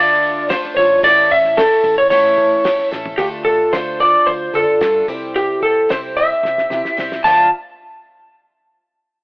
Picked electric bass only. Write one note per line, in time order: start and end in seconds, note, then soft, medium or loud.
0.00 0.53 D2 loud
0.76 0.97 A1 loud
1.04 1.67 A1 loud
1.84 2.69 A1 medium
2.93 3.14 A1 medium
3.19 3.61 D2 medium
3.73 4.15 D2 medium
4.27 4.48 D2 loud
4.54 4.64 D3 medium
4.81 5.02 G2 loud
5.09 5.72 C2 loud
5.90 6.32 C2 loud
6.43 6.65 C2 loud
6.70 6.81 C3 loud
6.98 7.19 C2 loud
7.25 7.50 D2 loud